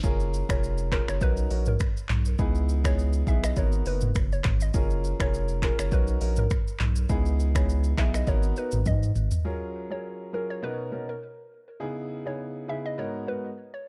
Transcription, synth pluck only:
0.50 0.61 C#5 medium
0.93 1.06 A#4 medium
1.09 1.20 C#5 medium
1.22 1.36 B4 loud
1.68 1.79 A#4 medium
2.86 2.96 C#5 medium
3.28 3.41 E5 medium
3.44 3.55 D#5 medium
3.58 3.71 C#5 medium
3.87 4.00 B4 medium
4.33 4.43 C#5 medium
4.62 4.73 D#5 medium
5.21 5.32 C#5 medium
5.64 5.77 A#4 medium
5.80 5.90 C#5 medium
5.93 6.06 B4 medium
6.39 6.49 A#4 medium
7.56 7.67 C#5 medium
7.99 8.12 E5 medium
8.15 8.26 D#5 medium
8.28 8.42 C#5 medium
8.58 8.71 B4 medium
8.87 9.29 D#5 medium
9.92 10.02 C#5 medium
10.34 10.47 A#4 medium
10.50 10.61 C#5 medium
10.63 10.77 B4 loud
11.09 11.20 A#4 medium
12.27 12.38 C#5 medium
12.69 12.83 E5 medium
12.86 12.96 D#5 medium
12.99 13.12 C#5 medium
13.28 13.42 B4 medium
13.74 13.85 C#5 medium

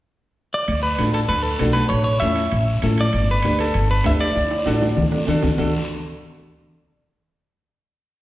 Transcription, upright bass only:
0.68 0.93 D2 medium
0.98 1.23 A1 medium
1.29 1.54 D2 medium
1.60 1.85 B1 medium
1.90 2.15 A1 medium
2.21 2.46 E2 medium
2.52 2.77 A1 medium
2.83 3.07 A1 medium
3.14 3.38 G1 medium
3.45 3.69 D2 medium
3.75 3.99 G1 medium
4.06 4.30 D2 medium
4.36 4.61 D2 medium
4.66 4.91 A1 medium
4.97 5.22 D2 medium
5.28 5.41 E2 medium
5.43 5.57 D2 medium
5.58 5.72 D2 medium

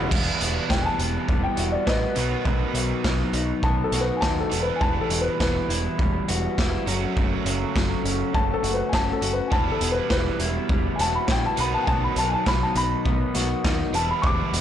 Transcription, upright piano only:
0.70 0.84 G5 medium
0.82 0.85 G#5 medium
0.82 1.42 A5 medium
1.43 1.72 G5 medium
1.72 1.86 D5 medium
1.87 3.01 B4 medium
1.87 3.02 D#5 medium
3.63 3.83 A5 medium
3.84 4.03 A4 medium
4.01 4.21 B4 medium
4.17 4.21 G#5 medium
4.21 4.41 A5 medium
4.40 4.60 A4 medium
4.63 4.81 B4 medium
4.76 4.80 G#5 medium
4.81 5.00 A5 loud
5.01 5.20 A4 medium
5.21 5.39 B4 medium
5.40 5.69 B4 medium
8.34 8.54 A5 medium
8.54 8.73 A4 medium
8.74 8.93 B4 medium
8.89 8.93 G#5 medium
8.94 9.13 A5 loud
9.13 9.32 A4 medium
9.33 9.52 B4 medium
9.48 9.52 G#5 medium
9.52 9.71 A5 medium
9.72 9.91 A4 medium
9.92 10.09 B4 medium
10.11 10.40 B4 loud
10.96 10.99 G#5 medium
11.01 11.14 A5 loud
11.15 11.29 B5 medium
11.31 11.44 G5 medium
11.46 11.59 A5 medium
11.60 11.73 B5 medium
11.74 11.86 A5 medium
11.83 11.87 G#5 medium
11.88 12.02 A5 loud
12.04 12.17 B5 medium
12.18 12.32 A5 medium
12.29 12.32 G#5 medium
12.34 12.47 A5 medium
12.48 12.61 B5 medium
12.63 12.76 A5 medium
12.77 13.34 B5 loud
13.95 14.08 A5 medium
14.11 14.24 B5 medium
14.22 14.25 C#6 medium
14.27 14.61 D6 medium

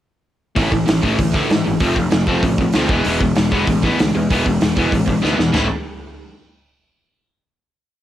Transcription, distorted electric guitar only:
0.55 0.70 A2 medium
0.55 0.71 E3 loud
0.55 0.72 A3 medium
0.71 0.85 A2 medium
0.71 0.86 E3 medium
0.86 1.01 A2 medium
0.86 1.02 E3 medium
1.02 1.17 A2 medium
1.02 1.17 E3 loud
1.02 1.19 A3 medium
1.18 1.32 A2 medium
1.18 1.33 E3 medium
1.34 1.49 A2 loud
1.34 1.50 E3 loud
1.34 1.50 A3 loud
1.50 1.64 A2 medium
1.50 1.65 E3 medium
1.65 1.80 A2 medium
1.65 1.80 E3 medium
1.80 1.95 F3 loud
1.80 1.95 A3 loud
1.80 1.97 C4 loud
1.96 2.10 F3 medium
1.96 2.11 A3 medium
2.12 2.26 F3 medium
2.12 2.27 A3 medium
2.28 2.43 F3 medium
2.28 2.43 A3 medium
2.28 2.43 C4 medium
2.45 2.58 F3 medium
2.45 2.59 A3 medium
2.61 2.74 F3 medium
2.61 2.74 A3 medium
2.75 2.90 F3 medium
2.75 2.90 A3 medium
2.75 2.91 C4 medium
2.90 3.05 E3 medium
2.90 3.05 G#3 loud
2.90 3.06 B3 loud
3.06 3.20 E3 loud
3.06 3.21 G#3 loud
3.06 3.21 B3 loud
3.21 3.35 E3 medium
3.21 3.35 G#3 medium
3.36 3.50 E3 medium
3.36 3.51 G#3 medium
3.51 3.65 E3 medium
3.51 3.66 G#3 medium
3.51 3.67 B3 medium
3.67 3.81 E3 medium
3.67 3.82 G#3 medium
3.84 3.98 E3 medium
3.84 3.99 G#3 medium
3.84 3.99 B3 loud
3.99 4.13 E3 medium
3.99 4.13 G#3 medium
4.15 4.28 E3 medium
4.15 4.29 G#3 medium
4.31 4.45 E3 medium
4.31 4.45 G#3 medium
4.31 4.46 B3 loud
4.46 4.60 E3 medium
4.46 4.60 G#3 medium
4.63 4.76 E3 medium
4.63 4.76 G#3 medium
4.77 4.91 E3 medium
4.77 4.92 G#3 medium
4.77 4.92 B3 loud
4.94 5.07 E3 medium
4.94 5.07 G#3 medium
5.09 5.21 E3 medium
5.09 5.22 G#3 medium
5.22 5.37 E3 medium
5.22 5.37 G#3 medium
5.22 5.38 B3 medium
5.38 5.52 E3 medium
5.38 5.52 G#3 medium
5.53 5.66 A2 medium
5.53 5.66 E3 loud
5.53 5.66 A3 medium
5.53 5.66 C4 loud
5.53 5.67 E4 loud

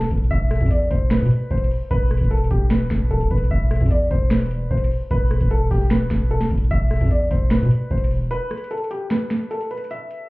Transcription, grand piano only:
0.31 0.68 E5 loud
0.71 0.86 D5 medium
0.91 1.06 C5 medium
1.11 1.48 B4 medium
1.51 1.66 C5 medium
1.91 2.28 B4 loud
2.31 2.46 A4 medium
2.51 2.66 G4 medium
2.71 3.08 B4 medium
3.11 3.26 A4 medium
3.31 3.46 B4 medium
3.51 3.88 E5 medium
3.91 4.06 D5 medium
4.11 4.26 C5 medium
4.31 4.68 B4 medium
4.71 4.86 C5 medium
5.11 5.48 B4 loud
5.51 5.66 A4 medium
5.71 5.86 G4 medium
5.91 6.28 B4 medium
6.31 6.46 A4 medium
6.71 7.08 E5 loud
7.11 7.26 D5 medium
7.31 7.46 C5 medium
7.51 7.88 B4 medium
7.91 8.06 C5 medium
8.31 8.68 B4 loud
8.71 8.86 A4 medium
8.91 9.06 G4 medium
9.11 9.48 B4 medium
9.51 9.66 A4 medium
9.71 9.86 B4 medium
9.91 10.28 E5 medium

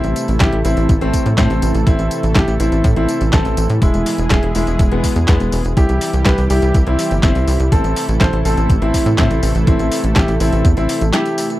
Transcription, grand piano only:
0.00 0.23 C4 medium
0.00 0.23 E4 loud
0.41 0.56 E4 medium
0.41 0.56 G4 medium
0.65 0.89 C4 medium
0.65 0.89 E4 loud
1.01 1.25 A3 medium
1.01 1.25 C4 medium
1.38 1.70 A3 medium
1.38 1.70 C4 loud
1.87 2.18 C4 medium
1.87 2.18 E4 loud
2.36 2.51 E4 medium
2.36 2.51 G4 medium
2.60 2.84 C4 medium
2.60 2.84 E4 loud
2.96 3.20 C4 medium
2.96 3.20 E4 medium
3.33 3.65 C4 medium
3.33 3.65 A4 medium
3.82 4.14 G#3 medium
3.82 4.14 E4 medium
4.31 4.47 E4 medium
4.31 4.47 G#4 medium
4.55 4.79 G#3 medium
4.55 4.79 E4 medium
4.92 5.15 G#3 medium
4.92 5.15 B3 loud
5.28 5.60 G#3 medium
5.28 5.60 B3 medium
5.77 6.09 E4 medium
5.77 6.09 G4 loud
6.26 6.42 G4 medium
6.26 6.42 B4 medium
6.50 6.74 E4 medium
6.50 6.74 G4 medium
6.87 7.11 C4 medium
6.87 7.11 E4 medium
7.23 7.55 C4 medium
7.23 7.55 E4 medium
7.72 8.04 C4 medium
7.72 8.04 A4 loud
8.21 8.37 A4 medium
8.21 8.37 C5 medium
8.45 8.69 C4 medium
8.45 8.69 A4 medium
8.82 9.06 C4 medium
8.82 9.06 E4 medium
9.18 9.50 C4 medium
9.18 9.50 E4 medium
9.67 9.99 C4 medium
9.67 9.99 E4 loud
10.16 10.32 E4 medium
10.16 10.32 G4 medium
10.40 10.64 C4 medium
10.40 10.64 E4 medium
10.77 11.01 C4 medium
10.77 11.01 E4 loud
11.14 11.45 E4 medium
11.14 11.45 G4 medium

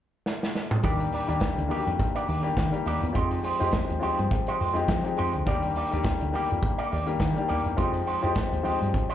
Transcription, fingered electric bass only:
0.84 1.06 D#2 medium
1.29 1.38 D#2 medium
1.58 1.68 D2 medium
1.87 1.97 F2 medium
2.29 2.51 D#2 medium
2.57 2.70 D#3 medium
2.86 2.98 D#2 medium
3.03 3.13 E2 medium
3.16 3.38 F2 medium
3.61 3.71 F2 medium
3.90 4.00 D#2 medium
4.19 4.29 G2 medium
4.61 4.82 F2 medium
4.89 5.01 F3 loud
5.19 5.31 F2 medium
5.35 5.45 D2 medium
5.47 5.69 D#2 medium
5.93 6.02 D#2 medium
6.22 6.31 D2 medium
6.52 6.61 F2 medium
6.93 7.14 D#2 medium
7.20 7.33 D#3 loud
7.50 7.62 D#2 medium
7.66 7.75 E2 medium
7.78 8.00 F2 medium
8.23 8.33 F2 medium
8.52 8.62 D#2 medium
8.82 8.91 G2 medium

